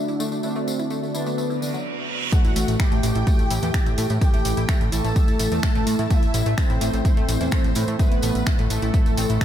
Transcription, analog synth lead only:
Already playing: D4
0.43 C4
1.14 B3
2.32 F#4
2.80 G4
4.21 G4
4.92 A4
6.10 E4
6.58 C4
7.99 B3
8.70 A3

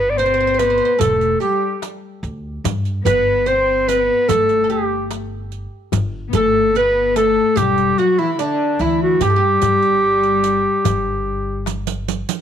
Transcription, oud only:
Already playing: B4
0.19 C5
0.26 C5
0.34 C5
0.40 C5
0.47 C5
0.54 C5
0.62 C5
0.70 C5
0.78 C5
0.85 C5
0.99 A4
1.40 G4
3.06 B4
3.46 C5
3.88 B4
4.29 A4
4.64 A4
4.70 G4
6.35 A4
6.76 B4
7.16 A4
7.56 G4
7.99 F#4
8.19 E4
8.39 D4
8.81 E4
9.21 G4
9.30 A4
9.36 G4

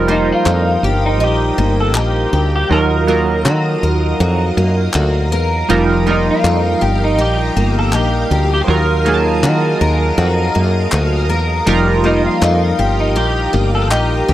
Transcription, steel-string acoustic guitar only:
Already playing: F3 D#4
0.08 A#3
0.46 D#4
0.84 G4
1.20 D#4
1.58 A#3
1.95 D#4
2.33 G4
3.08 A#3
3.46 F#4
3.83 A#4
4.20 F#4
4.57 A#3
4.95 F#4
5.32 A#4
5.70 F3
6.07 A#3
6.44 D#4
6.81 G4
7.19 D#4
7.57 A#3
7.94 D#4
8.31 G4
9.06 A#3
9.43 F#4
9.81 A#4
10.18 F#4
10.55 A#3
10.92 F#4
11.29 A#4
11.67 F3
12.04 A#3
12.41 D#4
12.79 G4
13.16 D#4
13.53 A#3
13.91 D#4
14.28 G4

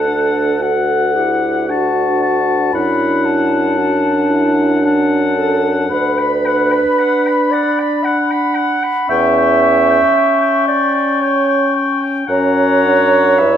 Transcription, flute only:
Already playing: A5
0.63 F#5
1.69 F#5
2.73 B5
3.25 A5
4.84 A5
5.89 B5
9.08 C#6
12.28 A#5
13.39 B5

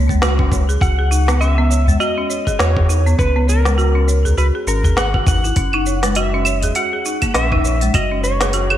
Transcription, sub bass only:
Already playing: C#2
0.81 C#2
2.59 E2
3.19 C#2
4.37 C#2
4.67 G#1
5.56 F#1
7.34 A#1
7.94 F#1

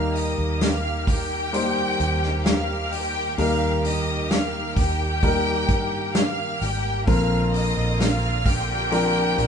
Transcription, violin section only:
Already playing: F5 F6
0.16 D#5 D#6
0.61 F5 F6
1.06 G4 G5
2.45 F5 F6
2.92 G4 G5
3.38 F5 F6
3.85 D#5 D#6
4.30 F5 F6
4.76 G4 G5
6.14 F5 F6
6.60 G4 G5
7.07 F5 F6
7.54 D#5 D#6
8.00 F5 F6
8.46 G4 G5

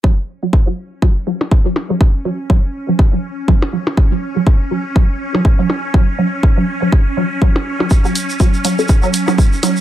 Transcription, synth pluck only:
0.04 F#3
0.43 F#3
0.67 F#3
1.02 F#3
1.27 F#3
1.66 F#3
1.90 F#3
2.25 F#3
2.50 F#3
2.89 F#3
3.13 F#3
3.48 F#3
3.73 F#3
4.12 F#3
4.36 F#3
4.71 F#3
4.96 F#3
5.34 F#3
5.59 F#3
5.94 F#3
6.19 F#3
6.57 F#3
6.82 F#3
7.17 F#3
7.42 F#3
7.80 F#3
8.05 F#3
8.40 F#3
8.65 F#3
9.03 F#3
9.28 F#3
9.63 F#3

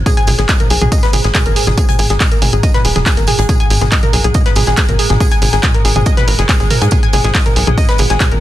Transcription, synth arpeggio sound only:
0.06 G#4
0.17 G#5
0.28 G#4
0.39 G#4
0.49 D#5
0.60 A#4
0.70 G#4
0.81 G#4
0.92 D#5
1.03 B4
1.13 G#4
1.24 G#4
1.35 G#4
1.46 A#4
1.56 G#4
1.67 G#4
1.78 G#4
1.89 G#5
1.99 G#4
2.10 G#4
2.20 D#5
2.31 A#4
2.42 G#4
2.53 G#4
2.63 D#5
2.74 B4
2.85 G#4
2.96 G#4
3.06 G#4
3.17 A#4
3.28 G#4
3.39 G#4
3.49 G#4
3.60 G#5
3.70 G#4
3.82 G#4
3.92 D#5
4.03 A#4
4.13 G#4
4.24 G#4
4.35 D#5
4.46 B4
4.56 G#4
4.67 G#4
4.78 G#4
4.89 A#4
4.99 G#4
5.10 G#4
5.20 G#4
5.32 G#5
5.42 G#4
5.53 G#4
5.63 D#5
5.74 A#4
5.85 G#4
5.96 G#4
6.06 D#5
6.17 B4
6.28 A#4
6.39 G#4
6.49 G#4
6.60 G#4
6.71 A#4
6.82 G#4
6.92 G#4
7.03 G#5
7.13 G#4
7.24 G#4
7.35 D#5
7.46 A#4
7.56 G#4
7.67 G#4
7.78 D#5
7.89 B4
7.99 G#4
8.10 G#4
8.20 G#4
8.32 A#4

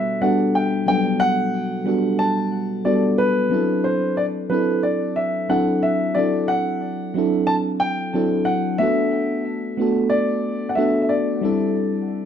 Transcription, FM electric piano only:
Already playing: B2 G3 B3 D4 F#4 A4
0.21 G3 B3 D4 F#4 A4
0.86 F#3 G3 B3 D4 A4
1.84 G3 B3 D4 F#4
1.88 A4
2.85 G3 B3 D4 F#4 A4
3.50 F#3 C4 D4 E4 A4
4.50 F#3 C4 D4 E4 A4
5.49 F#3 C4 D4 E4 A4
6.15 F#3 C4 D4 E4 A4
7.14 F#3 C4 D4 E4 A4
8.14 F#3 C4 D4 E4 A4
8.79 A3 B3 D4 F#4
8.83 A4
9.77 A3 B3 D4 F#4
9.82 A4
10.77 A3 B3 D4 F#4 A4
11.41 G3 C4 D4 E4 A4

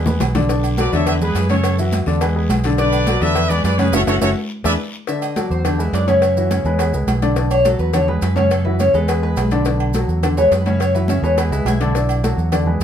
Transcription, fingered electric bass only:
Already playing: E2
0.20 B1
0.92 E2
1.35 F#2
2.07 E2
2.49 B1
3.21 E2
3.64 F#2
3.93 F#1
4.07 F#1
4.22 F#1
4.64 E2
5.50 E2
5.93 F#2
6.64 E2
6.93 C#2
7.07 B1
7.79 E2
8.22 F#2
8.94 E2
9.37 B1
10.08 E2
10.51 F#2
11.22 E2
11.51 C#2
11.65 B1
12.37 E2
12.80 F#2

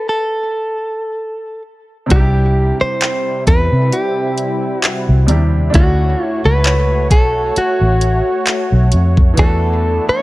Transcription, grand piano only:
2.06 C3 G3
2.11 D4 D#4
2.15 G4
2.20 E4
5.27 C3 G3 D4 E4
5.31 G4
5.70 A3 D4
5.75 C#4 E4
5.79 F#4
9.34 E3 B3
9.38 D4 F#4
9.43 A3

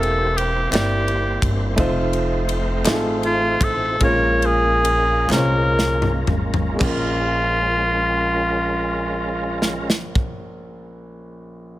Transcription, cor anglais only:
0.01 A4
0.37 G4
0.72 G4
3.25 F4
3.64 A4
4.04 C#5
4.46 G#4
5.32 A#4
6.81 F4

